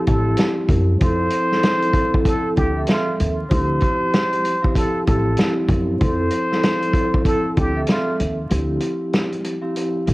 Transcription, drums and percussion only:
0.07 kick, closed hi-hat
0.37 snare, closed hi-hat
0.69 kick, closed hi-hat
1.00 kick, closed hi-hat
1.30 closed hi-hat
1.52 snare
1.63 snare, closed hi-hat
1.82 closed hi-hat
1.93 kick, closed hi-hat
2.14 kick
2.25 kick, closed hi-hat
2.57 kick, closed hi-hat
2.87 snare, closed hi-hat
3.20 closed hi-hat
3.51 kick, closed hi-hat
3.80 kick, closed hi-hat
4.13 snare, closed hi-hat
4.32 closed hi-hat
4.45 closed hi-hat
4.64 kick
4.75 kick, closed hi-hat
5.07 kick, closed hi-hat
5.37 snare, closed hi-hat
5.69 kick, closed hi-hat
6.01 kick, closed hi-hat
6.30 closed hi-hat
6.52 snare
6.63 snare, closed hi-hat
6.82 closed hi-hat
6.93 kick, closed hi-hat
7.14 kick
7.25 kick, closed hi-hat
7.57 kick, closed hi-hat
7.87 snare, closed hi-hat
8.20 closed hi-hat
8.51 closed hi-hat
8.81 closed hi-hat
9.13 snare, closed hi-hat
9.32 closed hi-hat
9.45 closed hi-hat
9.76 closed hi-hat
10.07 closed hi-hat

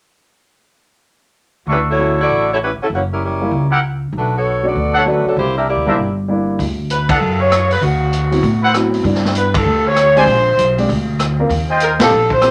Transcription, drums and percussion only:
6.59 kick, open hi-hat
6.90 closed hi-hat
7.09 kick, ride
7.52 cross-stick, closed hi-hat
7.71 open hi-hat
7.82 kick, open hi-hat
8.13 closed hi-hat
8.32 open hi-hat
8.43 kick, open hi-hat
8.74 cross-stick, closed hi-hat
8.94 open hi-hat
9.04 kick, open hi-hat
9.15 snare
9.25 snare
9.35 closed hi-hat
9.54 kick, ride
9.96 cross-stick, closed hi-hat
10.16 open hi-hat
10.27 kick, open hi-hat
10.58 closed hi-hat
10.78 open hi-hat
10.89 kick, open hi-hat
11.19 cross-stick, closed hi-hat
11.50 kick, open hi-hat
11.80 closed hi-hat
12.00 snare, ride
12.30 kick
12.42 cross-stick, closed hi-hat

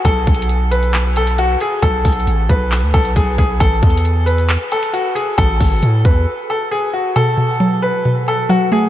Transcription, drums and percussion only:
0.05 kick, closed hi-hat
0.27 kick, closed hi-hat
0.35 closed hi-hat
0.42 closed hi-hat
0.49 closed hi-hat
0.72 closed hi-hat
0.83 closed hi-hat
0.94 clap, closed hi-hat
1.16 closed hi-hat
1.27 closed hi-hat
1.38 closed hi-hat
1.60 closed hi-hat
1.83 kick, closed hi-hat
2.05 kick, closed hi-hat, open hi-hat
2.12 closed hi-hat
2.20 closed hi-hat
2.27 closed hi-hat
2.49 kick, closed hi-hat
2.72 clap, closed hi-hat
2.94 kick, closed hi-hat
3.05 closed hi-hat
3.16 kick, closed hi-hat
3.38 kick, closed hi-hat
3.60 kick, closed hi-hat
3.83 kick, closed hi-hat
3.90 closed hi-hat
3.98 closed hi-hat
4.05 closed hi-hat
4.27 closed hi-hat
4.38 closed hi-hat
4.49 clap, closed hi-hat
4.72 closed hi-hat
4.83 closed hi-hat
4.94 closed hi-hat
5.16 closed hi-hat
5.38 kick, closed hi-hat
5.60 kick, open hi-hat
5.83 closed hi-hat
6.05 kick, closed hi-hat

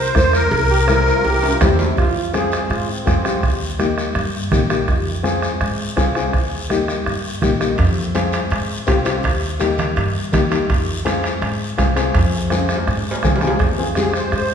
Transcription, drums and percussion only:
0.15 bombo low, bombo rim, high conga, short guiro
0.33 bombo rim, short guiro
0.51 bombo low, cowbell, long guiro
0.88 bombo rim, high conga, short guiro
1.07 short guiro
1.25 cowbell, long guiro
1.43 high timbale
1.61 bombo low, bombo rim, high conga, low conga, low timbale, short guiro
1.79 low timbale, short guiro
1.97 bombo low, bombo rim, high conga, long guiro
2.34 bombo rim, high conga, short guiro
2.52 bombo rim, short guiro
2.70 bombo rim, high conga, long guiro
3.07 bombo low, bombo rim, high conga, short guiro
3.25 bombo rim, short guiro
3.43 bombo low, bombo rim, high conga, long guiro
3.79 bombo rim, high conga, short guiro
3.98 bombo rim, short guiro
4.15 bombo rim, high conga, long guiro
4.52 bombo low, bombo rim, high conga, low conga, short guiro
4.70 bombo rim, short guiro
4.88 bombo low, bombo rim, high conga, long guiro
5.24 bombo rim, high conga, short guiro
5.42 bombo rim, short guiro
5.61 bombo rim, high conga, long guiro
5.97 bombo low, bombo rim, high conga, short guiro
6.15 bombo rim, short guiro
6.33 bombo low, bombo rim, long guiro
6.70 bombo rim, high conga, short guiro
6.88 bombo rim, short guiro
7.06 bombo rim, high conga, long guiro
7.42 bombo low, bombo rim, high conga, low conga, short guiro
7.61 bombo rim, short guiro
7.78 bombo low, bombo rim, high conga, high timbale, long guiro
8.15 bombo rim, high conga, high timbale, short guiro
8.32 bombo rim, high timbale, short guiro
8.51 bombo rim, high conga, high timbale, long guiro
8.87 bombo low, bombo rim, high conga, high timbale, short guiro
9.05 bombo rim, high timbale, short guiro
9.23 bombo low, bombo rim, high conga, high timbale, long guiro
9.60 bombo rim, high conga, high timbale, short guiro
9.78 bombo rim, low conga, high timbale, short guiro
9.96 bombo rim, high conga, high timbale, long guiro
10.33 bombo low, bombo rim, high conga, low conga, high timbale, short guiro
10.52 bombo rim, high timbale, short guiro
10.70 bombo low, bombo rim, high conga, high timbale, long guiro
11.06 bombo rim, high conga, high timbale, short guiro
11.24 bombo rim, high timbale, short guiro
11.42 bombo rim, high conga, high timbale, long guiro
11.78 bombo low, bombo rim, high conga, high timbale, short guiro
11.96 bombo rim, high timbale, short guiro
12.14 bombo low, bombo rim, high conga, high timbale, long guiro
12.50 bombo rim, high conga, high timbale, short guiro
12.69 bombo rim, short guiro
12.75 low timbale
12.87 bombo rim, high conga, long guiro
13.11 low timbale
13.23 bombo low, bombo rim, high conga, low conga, short guiro
13.36 low timbale
13.41 bombo rim, short guiro
13.47 low timbale
13.59 bombo low, bombo rim, cowbell, high conga, long guiro
13.95 bombo rim, cowbell, high conga, short guiro
14.14 bombo rim, short guiro
14.32 bombo rim, cowbell, high conga, long guiro

